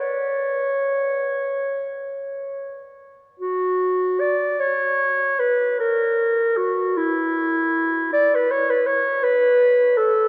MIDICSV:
0, 0, Header, 1, 2, 480
1, 0, Start_track
1, 0, Tempo, 1054482
1, 12, Time_signature, 6, 3, 24, 8
1, 972, Tempo, 1268499
1, 1452, Tempo, 793651
1, 3852, Tempo, 743494
1, 5732, End_track
2, 0, Start_track
2, 0, Title_t, "Clarinet"
2, 0, Program_c, 0, 71
2, 0, Note_on_c, 0, 73, 74
2, 1234, Note_off_c, 0, 73, 0
2, 1450, Note_on_c, 0, 66, 86
2, 1935, Note_on_c, 0, 74, 79
2, 1945, Note_off_c, 0, 66, 0
2, 2175, Note_on_c, 0, 73, 83
2, 2184, Note_off_c, 0, 74, 0
2, 2657, Note_on_c, 0, 71, 84
2, 2666, Note_off_c, 0, 73, 0
2, 2893, Note_off_c, 0, 71, 0
2, 2899, Note_on_c, 0, 70, 80
2, 3366, Note_on_c, 0, 66, 85
2, 3375, Note_off_c, 0, 70, 0
2, 3610, Note_on_c, 0, 64, 87
2, 3619, Note_off_c, 0, 66, 0
2, 4336, Note_off_c, 0, 64, 0
2, 4340, Note_on_c, 0, 74, 93
2, 4482, Note_on_c, 0, 71, 82
2, 4492, Note_off_c, 0, 74, 0
2, 4588, Note_on_c, 0, 73, 87
2, 4598, Note_off_c, 0, 71, 0
2, 4710, Note_on_c, 0, 71, 81
2, 4720, Note_off_c, 0, 73, 0
2, 4816, Note_on_c, 0, 73, 90
2, 4825, Note_off_c, 0, 71, 0
2, 5055, Note_on_c, 0, 71, 95
2, 5065, Note_off_c, 0, 73, 0
2, 5533, Note_on_c, 0, 69, 85
2, 5542, Note_off_c, 0, 71, 0
2, 5732, Note_off_c, 0, 69, 0
2, 5732, End_track
0, 0, End_of_file